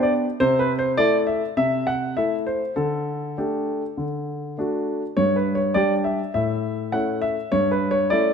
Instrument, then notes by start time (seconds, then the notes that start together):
grand piano
Already playing: B3 D4 G4
0.03 D5
0.40 C3 C5
0.59 B4
0.79 C5
0.97 A3 E4 A4 D5
1.27 E5
1.57 C3 E5
1.87 F#5
2.17 A3 E4 A4 E5
2.47 C5
2.76 D3 A4
3.38 A3 D4 G4
3.97 D3
4.58 A3 D4 F#4
5.17 G2 C#5
5.36 B4
5.55 C#5
5.74 G3 D4 G4 D5
6.04 E5
6.34 A2 E5
6.92 A3 C#4 E4 F#5
7.22 E5
7.52 G2 C#5
7.71 B4
7.91 C#5
8.10 A3 C#4 E4 D5